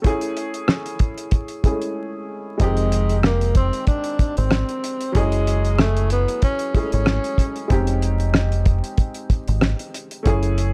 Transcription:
0.02 upright piano A3 C#4 E4, kick, closed hi-hat
0.06 upright piano G#4
0.21 closed hi-hat
0.37 closed hi-hat
0.54 closed hi-hat
0.68 cross-stick, snare
0.86 closed hi-hat
0.99 kick, closed hi-hat
1.18 closed hi-hat
1.31 kick, closed hi-hat
1.48 closed hi-hat
1.63 upright piano G#3 C#4 E4 G#4, kick, closed hi-hat
1.70 upright piano A3
1.82 closed hi-hat
2.57 fingered electric bass F1, upright piano D#3 G#3 C4, tenor saxophone G#3, kick, closed hi-hat
2.62 upright piano G4
2.77 closed hi-hat
2.92 closed hi-hat
3.09 closed hi-hat
3.23 tenor saxophone A#3, cross-stick, snare
3.41 closed hi-hat
3.55 tenor saxophone C4, kick, closed hi-hat
3.73 closed hi-hat
3.87 tenor saxophone D4, kick, closed hi-hat
4.04 closed hi-hat
4.19 kick, closed hi-hat
4.37 fingered electric bass G#1, tenor saxophone C4, closed hi-hat
4.51 cross-stick, snare
4.69 closed hi-hat
4.84 closed hi-hat
5.01 closed hi-hat
5.12 fingered electric bass F#1, upright piano F#3 C#4 E4, tenor saxophone G#3, kick, closed hi-hat
5.17 upright piano G#4
5.32 closed hi-hat
5.47 closed hi-hat
5.65 closed hi-hat
5.79 tenor saxophone A3, cross-stick, snare
5.97 closed hi-hat
6.10 tenor saxophone B3, closed hi-hat
6.28 closed hi-hat
6.42 tenor saxophone C#4, kick, closed hi-hat
6.59 closed hi-hat
6.74 upright piano G#3 C#4 E4 G#4, kick, closed hi-hat
6.80 upright piano A3
6.92 fingered electric bass G#1, tenor saxophone C#4, closed hi-hat
7.06 cross-stick, snare
7.24 closed hi-hat
7.38 kick, closed hi-hat
7.56 closed hi-hat
7.68 fingered electric bass F1, upright piano G#3 C4 D#4, kick, closed hi-hat
7.72 upright piano G4
7.87 closed hi-hat
8.02 closed hi-hat
8.20 closed hi-hat
8.34 cross-stick, snare
8.52 closed hi-hat
8.66 kick, closed hi-hat
8.84 closed hi-hat
8.98 kick, closed hi-hat
9.14 closed hi-hat
9.30 kick, closed hi-hat
9.48 fingered electric bass G#1, closed hi-hat
9.61 cross-stick, snare
9.79 closed hi-hat
9.94 closed hi-hat
10.11 closed hi-hat
10.23 fingered electric bass F#1, upright piano A3 C#4 E4, kick, closed hi-hat
10.27 upright piano G#4
10.43 closed hi-hat
10.58 closed hi-hat

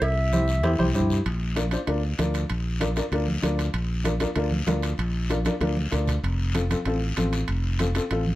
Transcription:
0.01 fingered electric bass C2, clarinet E5, cowbell, long guiro
0.32 upright piano E4 G4 C5, high conga, short guiro
0.48 short guiro
0.63 fingered electric bass E2, upright piano E4 G4 C5, cowbell, high conga, long guiro
0.78 fingered electric bass C2, upright piano E4 G4 C5, high conga
0.94 fingered electric bass G2, upright piano E4 G4 C5, short guiro
1.00 low conga
1.10 low conga, short guiro
1.26 fingered electric bass A#1, high conga, high timbale, long guiro
1.56 upright piano D4 F4 A#4, high conga, high timbale, short guiro
1.71 upright piano D4 F4 C5, high timbale, short guiro
1.87 fingered electric bass D2, upright piano D4 F4 A#4, high conga, high timbale, long guiro
2.19 fingered electric bass D2, upright piano D4 F4 A#4, high conga, high timbale, short guiro
2.34 high timbale, short guiro
2.49 fingered electric bass A#1, high timbale, long guiro
2.80 upright piano D4 F4 A#4, high conga, high timbale, short guiro
2.96 upright piano D4 F4 A#4, high timbale, short guiro
3.12 fingered electric bass D2, upright piano D4 F4 A#4, high conga, high timbale, long guiro
3.28 high conga
3.42 fingered electric bass D2, upright piano D4 F4 A#4, high conga, high timbale, short guiro
3.59 high timbale, short guiro
3.74 fingered electric bass A#1, high conga, high timbale, long guiro
4.04 upright piano D4 F4 A#4, high conga, high timbale, short guiro
4.20 upright piano D4 F4 A#4, high conga, high timbale, short guiro
4.36 fingered electric bass D2, upright piano D4 F4 A#4, high conga, high timbale, long guiro
4.51 high conga
4.66 fingered electric bass D2, upright piano D4 F4 A#4, high conga, high timbale, low timbale, short guiro
4.82 high timbale, short guiro
4.98 fingered electric bass A#1, high conga, high timbale, long guiro
5.29 upright piano D4 F4 A#4, high conga, high timbale, short guiro
5.45 upright piano D4 F4 A#4, high conga, high timbale, short guiro
5.61 fingered electric bass D2, upright piano D4 F4 A#4, high conga, high timbale, long guiro
5.77 high conga
5.91 fingered electric bass D2, upright piano D4 F4 A#4, low conga, high timbale, short guiro
6.07 low conga, high timbale, short guiro
6.23 fingered electric bass F1, high conga, high timbale, long guiro
6.54 upright piano C4 F4 A4, high conga, high timbale, short guiro
6.70 upright piano C4 F4 A4, high conga, high timbale, short guiro
6.85 fingered electric bass A1, upright piano C4 F4 A4, high conga, high timbale, long guiro
7.17 fingered electric bass A1, upright piano C4 F4 A4, high conga, high timbale, short guiro
7.33 high timbale, short guiro
7.48 fingered electric bass F1, high conga, high timbale, long guiro
7.79 upright piano C4 F4 A4, high conga, high timbale, short guiro
7.95 upright piano C4 F4 A4, high timbale, short guiro
8.11 fingered electric bass A1, upright piano C4 F4 A4, high conga, high timbale, long guiro
8.27 high conga

